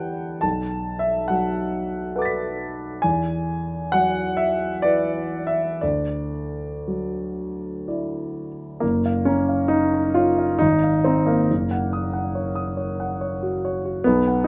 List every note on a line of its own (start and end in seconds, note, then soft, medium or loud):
0.00 0.39 E2 soft
0.00 0.45 E3 soft
0.00 0.39 G4 soft
0.00 0.40 B4 soft
0.00 0.45 F#5 medium
0.00 0.43 G5 medium
0.00 0.41 A5 medium
0.41 3.00 B1 soft
0.41 1.01 A5 medium
0.99 1.29 E5 medium
1.28 2.69 F#3 soft
1.28 2.14 F#5 medium
2.16 3.00 A4 soft
2.16 3.00 B4 soft
2.16 3.00 F#5 soft
2.16 3.01 D6 soft
2.22 3.03 A6 soft
2.22 3.05 B6 soft
3.02 5.77 E2 soft
3.02 3.92 G#5 medium
3.92 5.41 F#3 soft
3.92 4.37 F#5 medium
4.37 4.83 E5 medium
4.82 5.78 E4 soft
4.82 5.78 B4 soft
4.82 5.47 D5 medium
5.47 5.81 E5 medium
5.81 8.79 D2 soft
5.81 7.86 D5 medium
6.88 8.46 F#3 soft
7.88 8.79 E4 soft
7.88 8.79 D5 soft
8.80 10.57 F#1 soft
8.80 9.26 A#3 medium
9.06 9.40 F5 soft
9.25 9.70 C#4 medium
9.25 9.62 A#5 soft
9.49 9.84 F5 soft
9.68 10.14 D#4 medium
9.68 10.07 C#5 soft
9.94 10.30 A#5 soft
10.14 10.60 F4 medium
10.14 10.52 C#5 soft
10.39 10.61 F5 soft
10.59 11.47 G#1 soft
10.59 11.04 D#4 medium
10.84 11.19 F5 soft
11.04 11.27 C4 medium
11.04 11.41 A#5 soft
11.26 13.62 A#3 medium
11.26 11.49 F5 soft
11.50 14.01 F#1 soft
11.71 12.05 F#5 soft
11.93 12.27 D#6 soft
12.13 12.48 F#5 soft
12.35 12.69 C#5 soft
12.55 12.90 D#6 soft
12.77 13.11 C#5 soft
13.00 13.33 F#5 soft
13.21 13.55 C#5 soft
13.43 13.76 F#4 soft
13.65 13.98 C#5 soft
13.85 14.05 F#4 soft
14.04 14.47 B1 soft
14.04 14.46 B3 medium
14.28 14.47 F#5 soft